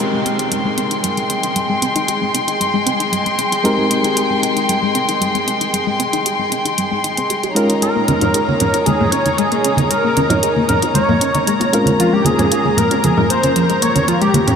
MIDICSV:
0, 0, Header, 1, 6, 480
1, 0, Start_track
1, 0, Key_signature, -4, "major"
1, 0, Tempo, 521739
1, 1437, Time_signature, 4, 2, 24, 8
1, 13392, End_track
2, 0, Start_track
2, 0, Title_t, "Violin section"
2, 0, Program_c, 0, 48
2, 0, Note_on_c, 0, 56, 69
2, 0, Note_on_c, 0, 79, 62
2, 0, Note_on_c, 0, 84, 72
2, 6921, Note_off_c, 0, 56, 0
2, 6921, Note_off_c, 0, 79, 0
2, 6921, Note_off_c, 0, 84, 0
2, 6953, Note_on_c, 0, 82, 76
2, 6954, Note_on_c, 0, 63, 65
2, 6954, Note_on_c, 0, 73, 61
2, 10758, Note_off_c, 0, 63, 0
2, 10759, Note_off_c, 0, 73, 0
2, 10801, Note_on_c, 0, 70, 61
2, 13392, Note_off_c, 0, 70, 0
2, 13392, Note_off_c, 0, 82, 0
2, 13392, End_track
3, 0, Start_track
3, 0, Title_t, "Analog synth lead"
3, 0, Program_c, 1, 81
3, 7196, Note_on_c, 1, 70, 93
3, 7880, Note_off_c, 1, 70, 0
3, 7906, Note_on_c, 1, 70, 90
3, 8148, Note_on_c, 1, 68, 93
3, 8162, Note_off_c, 1, 70, 0
3, 8386, Note_on_c, 1, 73, 99
3, 8400, Note_off_c, 1, 68, 0
3, 8628, Note_on_c, 1, 68, 89
3, 8642, Note_off_c, 1, 73, 0
3, 9101, Note_off_c, 1, 68, 0
3, 9107, Note_on_c, 1, 70, 97
3, 9795, Note_off_c, 1, 70, 0
3, 9827, Note_on_c, 1, 70, 88
3, 9937, Note_off_c, 1, 70, 0
3, 10071, Note_on_c, 1, 73, 97
3, 10757, Note_off_c, 1, 73, 0
3, 11040, Note_on_c, 1, 65, 84
3, 11162, Note_on_c, 1, 67, 84
3, 11175, Note_off_c, 1, 65, 0
3, 11276, Note_on_c, 1, 68, 96
3, 11290, Note_off_c, 1, 67, 0
3, 11757, Note_on_c, 1, 70, 92
3, 11771, Note_off_c, 1, 68, 0
3, 12001, Note_on_c, 1, 68, 94
3, 12015, Note_off_c, 1, 70, 0
3, 12120, Note_on_c, 1, 70, 94
3, 12134, Note_off_c, 1, 68, 0
3, 12232, Note_off_c, 1, 70, 0
3, 12237, Note_on_c, 1, 72, 102
3, 12684, Note_off_c, 1, 72, 0
3, 12716, Note_on_c, 1, 73, 96
3, 12954, Note_on_c, 1, 65, 93
3, 12968, Note_off_c, 1, 73, 0
3, 13073, Note_off_c, 1, 65, 0
3, 13078, Note_on_c, 1, 67, 92
3, 13187, Note_off_c, 1, 67, 0
3, 13197, Note_on_c, 1, 67, 97
3, 13392, Note_off_c, 1, 67, 0
3, 13392, End_track
4, 0, Start_track
4, 0, Title_t, "Reed electric piano"
4, 0, Program_c, 2, 4
4, 0, Note_on_c, 2, 56, 64
4, 0, Note_on_c, 2, 60, 59
4, 0, Note_on_c, 2, 63, 62
4, 0, Note_on_c, 2, 67, 58
4, 0, Note_on_c, 2, 70, 69
4, 3325, Note_off_c, 2, 56, 0
4, 3327, Note_off_c, 2, 60, 0
4, 3330, Note_off_c, 2, 63, 0
4, 3332, Note_off_c, 2, 67, 0
4, 3334, Note_off_c, 2, 70, 0
4, 3346, Note_on_c, 2, 56, 66
4, 3351, Note_on_c, 2, 60, 62
4, 3356, Note_on_c, 2, 63, 61
4, 3360, Note_on_c, 2, 67, 61
4, 3364, Note_on_c, 2, 70, 74
4, 6924, Note_off_c, 2, 56, 0
4, 6926, Note_off_c, 2, 60, 0
4, 6928, Note_off_c, 2, 63, 0
4, 6930, Note_off_c, 2, 67, 0
4, 6932, Note_off_c, 2, 70, 0
4, 6946, Note_on_c, 2, 56, 68
4, 6950, Note_on_c, 2, 61, 58
4, 6955, Note_on_c, 2, 63, 63
4, 6959, Note_on_c, 2, 65, 58
4, 6964, Note_on_c, 2, 70, 76
4, 10763, Note_off_c, 2, 56, 0
4, 10765, Note_off_c, 2, 61, 0
4, 10768, Note_off_c, 2, 63, 0
4, 10770, Note_off_c, 2, 65, 0
4, 10772, Note_off_c, 2, 70, 0
4, 10788, Note_on_c, 2, 56, 68
4, 10791, Note_on_c, 2, 60, 62
4, 10797, Note_on_c, 2, 61, 64
4, 10800, Note_on_c, 2, 65, 62
4, 10806, Note_on_c, 2, 70, 78
4, 13392, Note_off_c, 2, 56, 0
4, 13392, Note_off_c, 2, 60, 0
4, 13392, Note_off_c, 2, 61, 0
4, 13392, Note_off_c, 2, 65, 0
4, 13392, Note_off_c, 2, 70, 0
4, 13392, End_track
5, 0, Start_track
5, 0, Title_t, "Synth arpeggio sound"
5, 0, Program_c, 3, 84
5, 120, Note_on_c, 3, 56, 70
5, 169, Note_off_c, 3, 56, 0
5, 234, Note_on_c, 3, 60, 72
5, 287, Note_off_c, 3, 60, 0
5, 359, Note_on_c, 3, 63, 71
5, 408, Note_off_c, 3, 63, 0
5, 476, Note_on_c, 3, 55, 77
5, 554, Note_off_c, 3, 55, 0
5, 600, Note_on_c, 3, 56, 91
5, 649, Note_off_c, 3, 56, 0
5, 716, Note_on_c, 3, 60, 93
5, 768, Note_off_c, 3, 60, 0
5, 838, Note_on_c, 3, 63, 69
5, 888, Note_off_c, 3, 63, 0
5, 956, Note_on_c, 3, 55, 94
5, 1008, Note_off_c, 3, 55, 0
5, 1081, Note_on_c, 3, 56, 73
5, 1129, Note_off_c, 3, 56, 0
5, 1197, Note_on_c, 3, 60, 68
5, 1274, Note_off_c, 3, 60, 0
5, 1319, Note_on_c, 3, 63, 72
5, 1368, Note_off_c, 3, 63, 0
5, 1435, Note_on_c, 3, 55, 76
5, 1467, Note_off_c, 3, 55, 0
5, 1559, Note_on_c, 3, 56, 91
5, 1609, Note_off_c, 3, 56, 0
5, 1675, Note_on_c, 3, 60, 89
5, 1728, Note_off_c, 3, 60, 0
5, 1800, Note_on_c, 3, 63, 99
5, 1873, Note_off_c, 3, 63, 0
5, 1919, Note_on_c, 3, 67, 78
5, 1969, Note_off_c, 3, 67, 0
5, 2039, Note_on_c, 3, 56, 68
5, 2088, Note_off_c, 3, 56, 0
5, 2156, Note_on_c, 3, 60, 72
5, 2208, Note_off_c, 3, 60, 0
5, 2279, Note_on_c, 3, 63, 73
5, 2329, Note_off_c, 3, 63, 0
5, 2396, Note_on_c, 3, 55, 77
5, 2474, Note_off_c, 3, 55, 0
5, 2519, Note_on_c, 3, 56, 91
5, 2568, Note_off_c, 3, 56, 0
5, 2633, Note_on_c, 3, 60, 92
5, 2686, Note_off_c, 3, 60, 0
5, 2758, Note_on_c, 3, 63, 72
5, 2808, Note_off_c, 3, 63, 0
5, 2873, Note_on_c, 3, 55, 96
5, 2927, Note_off_c, 3, 55, 0
5, 2996, Note_on_c, 3, 56, 72
5, 3047, Note_off_c, 3, 56, 0
5, 3116, Note_on_c, 3, 60, 72
5, 3194, Note_off_c, 3, 60, 0
5, 3238, Note_on_c, 3, 63, 70
5, 3288, Note_off_c, 3, 63, 0
5, 3354, Note_on_c, 3, 55, 76
5, 3386, Note_off_c, 3, 55, 0
5, 3477, Note_on_c, 3, 56, 96
5, 3527, Note_off_c, 3, 56, 0
5, 3594, Note_on_c, 3, 60, 91
5, 3647, Note_off_c, 3, 60, 0
5, 3716, Note_on_c, 3, 63, 101
5, 3791, Note_off_c, 3, 63, 0
5, 3837, Note_on_c, 3, 67, 76
5, 3888, Note_off_c, 3, 67, 0
5, 3960, Note_on_c, 3, 56, 72
5, 4009, Note_off_c, 3, 56, 0
5, 4075, Note_on_c, 3, 60, 74
5, 4127, Note_off_c, 3, 60, 0
5, 4199, Note_on_c, 3, 63, 73
5, 4248, Note_off_c, 3, 63, 0
5, 4315, Note_on_c, 3, 55, 76
5, 4393, Note_off_c, 3, 55, 0
5, 4440, Note_on_c, 3, 56, 92
5, 4489, Note_off_c, 3, 56, 0
5, 4555, Note_on_c, 3, 60, 98
5, 4607, Note_off_c, 3, 60, 0
5, 4679, Note_on_c, 3, 63, 72
5, 4728, Note_off_c, 3, 63, 0
5, 4796, Note_on_c, 3, 55, 93
5, 4848, Note_off_c, 3, 55, 0
5, 4919, Note_on_c, 3, 56, 71
5, 4968, Note_off_c, 3, 56, 0
5, 5035, Note_on_c, 3, 60, 69
5, 5113, Note_off_c, 3, 60, 0
5, 5160, Note_on_c, 3, 63, 72
5, 5209, Note_off_c, 3, 63, 0
5, 5276, Note_on_c, 3, 55, 78
5, 5308, Note_off_c, 3, 55, 0
5, 5398, Note_on_c, 3, 56, 91
5, 5448, Note_off_c, 3, 56, 0
5, 5515, Note_on_c, 3, 60, 94
5, 5568, Note_off_c, 3, 60, 0
5, 5640, Note_on_c, 3, 63, 98
5, 5713, Note_off_c, 3, 63, 0
5, 5757, Note_on_c, 3, 67, 78
5, 5809, Note_off_c, 3, 67, 0
5, 5880, Note_on_c, 3, 56, 73
5, 5929, Note_off_c, 3, 56, 0
5, 5997, Note_on_c, 3, 60, 70
5, 6049, Note_off_c, 3, 60, 0
5, 6119, Note_on_c, 3, 63, 74
5, 6168, Note_off_c, 3, 63, 0
5, 6240, Note_on_c, 3, 55, 82
5, 6316, Note_off_c, 3, 55, 0
5, 6362, Note_on_c, 3, 56, 92
5, 6410, Note_off_c, 3, 56, 0
5, 6478, Note_on_c, 3, 63, 70
5, 6529, Note_off_c, 3, 63, 0
5, 6604, Note_on_c, 3, 60, 74
5, 6651, Note_off_c, 3, 60, 0
5, 6717, Note_on_c, 3, 67, 77
5, 6768, Note_off_c, 3, 67, 0
5, 6841, Note_on_c, 3, 67, 95
5, 6889, Note_off_c, 3, 67, 0
5, 6956, Note_on_c, 3, 73, 73
5, 7008, Note_off_c, 3, 73, 0
5, 7078, Note_on_c, 3, 63, 74
5, 7128, Note_off_c, 3, 63, 0
5, 7197, Note_on_c, 3, 56, 77
5, 7228, Note_off_c, 3, 56, 0
5, 7320, Note_on_c, 3, 58, 98
5, 7369, Note_off_c, 3, 58, 0
5, 7438, Note_on_c, 3, 61, 88
5, 7489, Note_off_c, 3, 61, 0
5, 7561, Note_on_c, 3, 63, 100
5, 7634, Note_off_c, 3, 63, 0
5, 7677, Note_on_c, 3, 68, 78
5, 7729, Note_off_c, 3, 68, 0
5, 7802, Note_on_c, 3, 58, 73
5, 7850, Note_off_c, 3, 58, 0
5, 7919, Note_on_c, 3, 61, 71
5, 7969, Note_off_c, 3, 61, 0
5, 8040, Note_on_c, 3, 63, 70
5, 8089, Note_off_c, 3, 63, 0
5, 8158, Note_on_c, 3, 56, 77
5, 8235, Note_off_c, 3, 56, 0
5, 8279, Note_on_c, 3, 58, 90
5, 8328, Note_off_c, 3, 58, 0
5, 8397, Note_on_c, 3, 61, 91
5, 8448, Note_off_c, 3, 61, 0
5, 8521, Note_on_c, 3, 63, 71
5, 8569, Note_off_c, 3, 63, 0
5, 8635, Note_on_c, 3, 56, 96
5, 8687, Note_off_c, 3, 56, 0
5, 8760, Note_on_c, 3, 58, 75
5, 8809, Note_off_c, 3, 58, 0
5, 8878, Note_on_c, 3, 61, 72
5, 8955, Note_off_c, 3, 61, 0
5, 8999, Note_on_c, 3, 63, 72
5, 9048, Note_off_c, 3, 63, 0
5, 9117, Note_on_c, 3, 56, 78
5, 9148, Note_off_c, 3, 56, 0
5, 9241, Note_on_c, 3, 58, 100
5, 9290, Note_off_c, 3, 58, 0
5, 9356, Note_on_c, 3, 61, 91
5, 9408, Note_off_c, 3, 61, 0
5, 9482, Note_on_c, 3, 63, 101
5, 9554, Note_off_c, 3, 63, 0
5, 9597, Note_on_c, 3, 68, 80
5, 9648, Note_off_c, 3, 68, 0
5, 9721, Note_on_c, 3, 58, 74
5, 9769, Note_off_c, 3, 58, 0
5, 9837, Note_on_c, 3, 61, 71
5, 9889, Note_off_c, 3, 61, 0
5, 9959, Note_on_c, 3, 63, 75
5, 10008, Note_off_c, 3, 63, 0
5, 10075, Note_on_c, 3, 56, 79
5, 10153, Note_off_c, 3, 56, 0
5, 10199, Note_on_c, 3, 58, 95
5, 10248, Note_off_c, 3, 58, 0
5, 10316, Note_on_c, 3, 61, 94
5, 10368, Note_off_c, 3, 61, 0
5, 10442, Note_on_c, 3, 63, 72
5, 10490, Note_off_c, 3, 63, 0
5, 10557, Note_on_c, 3, 56, 96
5, 10609, Note_off_c, 3, 56, 0
5, 10682, Note_on_c, 3, 58, 74
5, 10730, Note_off_c, 3, 58, 0
5, 10801, Note_on_c, 3, 58, 73
5, 10876, Note_off_c, 3, 58, 0
5, 10921, Note_on_c, 3, 61, 71
5, 10969, Note_off_c, 3, 61, 0
5, 11038, Note_on_c, 3, 53, 83
5, 11068, Note_off_c, 3, 53, 0
5, 11160, Note_on_c, 3, 56, 96
5, 11209, Note_off_c, 3, 56, 0
5, 11278, Note_on_c, 3, 58, 95
5, 11329, Note_off_c, 3, 58, 0
5, 11399, Note_on_c, 3, 61, 100
5, 11473, Note_off_c, 3, 61, 0
5, 11518, Note_on_c, 3, 65, 81
5, 11569, Note_off_c, 3, 65, 0
5, 11640, Note_on_c, 3, 56, 71
5, 11689, Note_off_c, 3, 56, 0
5, 11756, Note_on_c, 3, 58, 72
5, 11808, Note_off_c, 3, 58, 0
5, 11881, Note_on_c, 3, 61, 72
5, 11929, Note_off_c, 3, 61, 0
5, 11997, Note_on_c, 3, 53, 83
5, 12074, Note_off_c, 3, 53, 0
5, 12121, Note_on_c, 3, 56, 95
5, 12169, Note_off_c, 3, 56, 0
5, 12236, Note_on_c, 3, 58, 95
5, 12288, Note_off_c, 3, 58, 0
5, 12359, Note_on_c, 3, 61, 73
5, 12409, Note_off_c, 3, 61, 0
5, 12477, Note_on_c, 3, 53, 99
5, 12528, Note_off_c, 3, 53, 0
5, 12601, Note_on_c, 3, 56, 74
5, 12649, Note_off_c, 3, 56, 0
5, 12717, Note_on_c, 3, 58, 70
5, 12794, Note_off_c, 3, 58, 0
5, 12838, Note_on_c, 3, 61, 69
5, 12888, Note_off_c, 3, 61, 0
5, 12955, Note_on_c, 3, 53, 78
5, 12987, Note_off_c, 3, 53, 0
5, 13078, Note_on_c, 3, 56, 97
5, 13128, Note_off_c, 3, 56, 0
5, 13194, Note_on_c, 3, 58, 91
5, 13247, Note_off_c, 3, 58, 0
5, 13318, Note_on_c, 3, 61, 102
5, 13392, Note_off_c, 3, 61, 0
5, 13392, End_track
6, 0, Start_track
6, 0, Title_t, "Drums"
6, 0, Note_on_c, 9, 42, 74
6, 89, Note_off_c, 9, 42, 0
6, 238, Note_on_c, 9, 42, 68
6, 330, Note_off_c, 9, 42, 0
6, 361, Note_on_c, 9, 42, 47
6, 453, Note_off_c, 9, 42, 0
6, 475, Note_on_c, 9, 42, 68
6, 567, Note_off_c, 9, 42, 0
6, 715, Note_on_c, 9, 42, 75
6, 807, Note_off_c, 9, 42, 0
6, 838, Note_on_c, 9, 42, 46
6, 930, Note_off_c, 9, 42, 0
6, 956, Note_on_c, 9, 42, 68
6, 1048, Note_off_c, 9, 42, 0
6, 1080, Note_on_c, 9, 42, 33
6, 1172, Note_off_c, 9, 42, 0
6, 1195, Note_on_c, 9, 42, 73
6, 1287, Note_off_c, 9, 42, 0
6, 1319, Note_on_c, 9, 42, 49
6, 1411, Note_off_c, 9, 42, 0
6, 1434, Note_on_c, 9, 42, 70
6, 1526, Note_off_c, 9, 42, 0
6, 1676, Note_on_c, 9, 42, 70
6, 1768, Note_off_c, 9, 42, 0
6, 1800, Note_on_c, 9, 42, 48
6, 1892, Note_off_c, 9, 42, 0
6, 1917, Note_on_c, 9, 42, 69
6, 2009, Note_off_c, 9, 42, 0
6, 2158, Note_on_c, 9, 42, 70
6, 2250, Note_off_c, 9, 42, 0
6, 2282, Note_on_c, 9, 42, 48
6, 2374, Note_off_c, 9, 42, 0
6, 2401, Note_on_c, 9, 42, 66
6, 2493, Note_off_c, 9, 42, 0
6, 2637, Note_on_c, 9, 42, 70
6, 2729, Note_off_c, 9, 42, 0
6, 2762, Note_on_c, 9, 42, 46
6, 2854, Note_off_c, 9, 42, 0
6, 2878, Note_on_c, 9, 42, 68
6, 2970, Note_off_c, 9, 42, 0
6, 3001, Note_on_c, 9, 42, 34
6, 3093, Note_off_c, 9, 42, 0
6, 3116, Note_on_c, 9, 42, 71
6, 3208, Note_off_c, 9, 42, 0
6, 3242, Note_on_c, 9, 42, 47
6, 3334, Note_off_c, 9, 42, 0
6, 3358, Note_on_c, 9, 42, 65
6, 3450, Note_off_c, 9, 42, 0
6, 3596, Note_on_c, 9, 42, 67
6, 3688, Note_off_c, 9, 42, 0
6, 3721, Note_on_c, 9, 42, 45
6, 3813, Note_off_c, 9, 42, 0
6, 3835, Note_on_c, 9, 42, 72
6, 3927, Note_off_c, 9, 42, 0
6, 4078, Note_on_c, 9, 42, 68
6, 4170, Note_off_c, 9, 42, 0
6, 4201, Note_on_c, 9, 42, 45
6, 4293, Note_off_c, 9, 42, 0
6, 4316, Note_on_c, 9, 42, 66
6, 4408, Note_off_c, 9, 42, 0
6, 4554, Note_on_c, 9, 42, 66
6, 4646, Note_off_c, 9, 42, 0
6, 4680, Note_on_c, 9, 42, 43
6, 4772, Note_off_c, 9, 42, 0
6, 4799, Note_on_c, 9, 42, 69
6, 4891, Note_off_c, 9, 42, 0
6, 4923, Note_on_c, 9, 42, 32
6, 5015, Note_off_c, 9, 42, 0
6, 5039, Note_on_c, 9, 42, 67
6, 5131, Note_off_c, 9, 42, 0
6, 5162, Note_on_c, 9, 42, 45
6, 5254, Note_off_c, 9, 42, 0
6, 5280, Note_on_c, 9, 42, 64
6, 5372, Note_off_c, 9, 42, 0
6, 5518, Note_on_c, 9, 42, 68
6, 5610, Note_off_c, 9, 42, 0
6, 5642, Note_on_c, 9, 42, 44
6, 5734, Note_off_c, 9, 42, 0
6, 5758, Note_on_c, 9, 42, 67
6, 5850, Note_off_c, 9, 42, 0
6, 5998, Note_on_c, 9, 42, 66
6, 6090, Note_off_c, 9, 42, 0
6, 6123, Note_on_c, 9, 42, 46
6, 6215, Note_off_c, 9, 42, 0
6, 6237, Note_on_c, 9, 42, 63
6, 6329, Note_off_c, 9, 42, 0
6, 6479, Note_on_c, 9, 42, 69
6, 6571, Note_off_c, 9, 42, 0
6, 6600, Note_on_c, 9, 42, 44
6, 6692, Note_off_c, 9, 42, 0
6, 6717, Note_on_c, 9, 42, 69
6, 6809, Note_off_c, 9, 42, 0
6, 6840, Note_on_c, 9, 42, 30
6, 6932, Note_off_c, 9, 42, 0
6, 6958, Note_on_c, 9, 42, 68
6, 7050, Note_off_c, 9, 42, 0
6, 7081, Note_on_c, 9, 42, 45
6, 7173, Note_off_c, 9, 42, 0
6, 7197, Note_on_c, 9, 42, 65
6, 7289, Note_off_c, 9, 42, 0
6, 7435, Note_on_c, 9, 42, 65
6, 7439, Note_on_c, 9, 63, 77
6, 7527, Note_off_c, 9, 42, 0
6, 7531, Note_off_c, 9, 63, 0
6, 7557, Note_on_c, 9, 42, 44
6, 7561, Note_on_c, 9, 60, 50
6, 7563, Note_on_c, 9, 64, 67
6, 7649, Note_off_c, 9, 42, 0
6, 7653, Note_off_c, 9, 60, 0
6, 7655, Note_off_c, 9, 64, 0
6, 7676, Note_on_c, 9, 42, 70
6, 7768, Note_off_c, 9, 42, 0
6, 7807, Note_on_c, 9, 63, 55
6, 7899, Note_off_c, 9, 63, 0
6, 7914, Note_on_c, 9, 42, 68
6, 7923, Note_on_c, 9, 64, 65
6, 8006, Note_off_c, 9, 42, 0
6, 8015, Note_off_c, 9, 64, 0
6, 8040, Note_on_c, 9, 42, 45
6, 8042, Note_on_c, 9, 60, 40
6, 8132, Note_off_c, 9, 42, 0
6, 8134, Note_off_c, 9, 60, 0
6, 8154, Note_on_c, 9, 42, 67
6, 8163, Note_on_c, 9, 63, 84
6, 8166, Note_on_c, 9, 60, 30
6, 8246, Note_off_c, 9, 42, 0
6, 8255, Note_off_c, 9, 63, 0
6, 8258, Note_off_c, 9, 60, 0
6, 8288, Note_on_c, 9, 64, 72
6, 8380, Note_off_c, 9, 64, 0
6, 8393, Note_on_c, 9, 42, 66
6, 8485, Note_off_c, 9, 42, 0
6, 8516, Note_on_c, 9, 42, 41
6, 8517, Note_on_c, 9, 63, 54
6, 8608, Note_off_c, 9, 42, 0
6, 8609, Note_off_c, 9, 63, 0
6, 8633, Note_on_c, 9, 42, 66
6, 8725, Note_off_c, 9, 42, 0
6, 8756, Note_on_c, 9, 42, 32
6, 8848, Note_off_c, 9, 42, 0
6, 8873, Note_on_c, 9, 42, 67
6, 8965, Note_off_c, 9, 42, 0
6, 8989, Note_on_c, 9, 63, 89
6, 8998, Note_on_c, 9, 42, 45
6, 9081, Note_off_c, 9, 63, 0
6, 9090, Note_off_c, 9, 42, 0
6, 9114, Note_on_c, 9, 42, 66
6, 9206, Note_off_c, 9, 42, 0
6, 9354, Note_on_c, 9, 42, 70
6, 9358, Note_on_c, 9, 63, 73
6, 9446, Note_off_c, 9, 42, 0
6, 9450, Note_off_c, 9, 63, 0
6, 9474, Note_on_c, 9, 64, 77
6, 9476, Note_on_c, 9, 60, 55
6, 9479, Note_on_c, 9, 42, 46
6, 9566, Note_off_c, 9, 64, 0
6, 9568, Note_off_c, 9, 60, 0
6, 9571, Note_off_c, 9, 42, 0
6, 9595, Note_on_c, 9, 42, 68
6, 9687, Note_off_c, 9, 42, 0
6, 9718, Note_on_c, 9, 63, 55
6, 9810, Note_off_c, 9, 63, 0
6, 9834, Note_on_c, 9, 42, 71
6, 9841, Note_on_c, 9, 64, 69
6, 9926, Note_off_c, 9, 42, 0
6, 9933, Note_off_c, 9, 64, 0
6, 9958, Note_on_c, 9, 42, 48
6, 9961, Note_on_c, 9, 60, 51
6, 10050, Note_off_c, 9, 42, 0
6, 10053, Note_off_c, 9, 60, 0
6, 10069, Note_on_c, 9, 63, 72
6, 10075, Note_on_c, 9, 42, 67
6, 10161, Note_off_c, 9, 63, 0
6, 10167, Note_off_c, 9, 42, 0
6, 10202, Note_on_c, 9, 64, 69
6, 10294, Note_off_c, 9, 64, 0
6, 10316, Note_on_c, 9, 42, 69
6, 10408, Note_off_c, 9, 42, 0
6, 10438, Note_on_c, 9, 42, 45
6, 10438, Note_on_c, 9, 63, 50
6, 10530, Note_off_c, 9, 42, 0
6, 10530, Note_off_c, 9, 63, 0
6, 10556, Note_on_c, 9, 42, 69
6, 10648, Note_off_c, 9, 42, 0
6, 10674, Note_on_c, 9, 60, 50
6, 10680, Note_on_c, 9, 42, 33
6, 10766, Note_off_c, 9, 60, 0
6, 10772, Note_off_c, 9, 42, 0
6, 10795, Note_on_c, 9, 42, 73
6, 10887, Note_off_c, 9, 42, 0
6, 10910, Note_on_c, 9, 63, 75
6, 10920, Note_on_c, 9, 42, 46
6, 11002, Note_off_c, 9, 63, 0
6, 11012, Note_off_c, 9, 42, 0
6, 11038, Note_on_c, 9, 42, 74
6, 11130, Note_off_c, 9, 42, 0
6, 11267, Note_on_c, 9, 63, 83
6, 11276, Note_on_c, 9, 42, 69
6, 11359, Note_off_c, 9, 63, 0
6, 11368, Note_off_c, 9, 42, 0
6, 11395, Note_on_c, 9, 60, 59
6, 11400, Note_on_c, 9, 42, 48
6, 11401, Note_on_c, 9, 64, 68
6, 11487, Note_off_c, 9, 60, 0
6, 11492, Note_off_c, 9, 42, 0
6, 11493, Note_off_c, 9, 64, 0
6, 11515, Note_on_c, 9, 42, 72
6, 11607, Note_off_c, 9, 42, 0
6, 11641, Note_on_c, 9, 63, 57
6, 11733, Note_off_c, 9, 63, 0
6, 11751, Note_on_c, 9, 64, 67
6, 11757, Note_on_c, 9, 42, 75
6, 11843, Note_off_c, 9, 64, 0
6, 11849, Note_off_c, 9, 42, 0
6, 11878, Note_on_c, 9, 42, 51
6, 11878, Note_on_c, 9, 60, 53
6, 11970, Note_off_c, 9, 42, 0
6, 11970, Note_off_c, 9, 60, 0
6, 11995, Note_on_c, 9, 42, 71
6, 12002, Note_on_c, 9, 60, 32
6, 12004, Note_on_c, 9, 63, 68
6, 12087, Note_off_c, 9, 42, 0
6, 12094, Note_off_c, 9, 60, 0
6, 12096, Note_off_c, 9, 63, 0
6, 12121, Note_on_c, 9, 64, 68
6, 12213, Note_off_c, 9, 64, 0
6, 12238, Note_on_c, 9, 42, 74
6, 12330, Note_off_c, 9, 42, 0
6, 12360, Note_on_c, 9, 42, 47
6, 12364, Note_on_c, 9, 63, 55
6, 12452, Note_off_c, 9, 42, 0
6, 12456, Note_off_c, 9, 63, 0
6, 12475, Note_on_c, 9, 42, 72
6, 12567, Note_off_c, 9, 42, 0
6, 12600, Note_on_c, 9, 42, 33
6, 12692, Note_off_c, 9, 42, 0
6, 12716, Note_on_c, 9, 42, 77
6, 12808, Note_off_c, 9, 42, 0
6, 12840, Note_on_c, 9, 42, 50
6, 12842, Note_on_c, 9, 63, 82
6, 12932, Note_off_c, 9, 42, 0
6, 12934, Note_off_c, 9, 63, 0
6, 12955, Note_on_c, 9, 42, 73
6, 13047, Note_off_c, 9, 42, 0
6, 13078, Note_on_c, 9, 42, 36
6, 13170, Note_off_c, 9, 42, 0
6, 13191, Note_on_c, 9, 63, 84
6, 13196, Note_on_c, 9, 42, 75
6, 13283, Note_off_c, 9, 63, 0
6, 13288, Note_off_c, 9, 42, 0
6, 13316, Note_on_c, 9, 60, 55
6, 13318, Note_on_c, 9, 42, 50
6, 13318, Note_on_c, 9, 64, 78
6, 13392, Note_off_c, 9, 42, 0
6, 13392, Note_off_c, 9, 60, 0
6, 13392, Note_off_c, 9, 64, 0
6, 13392, End_track
0, 0, End_of_file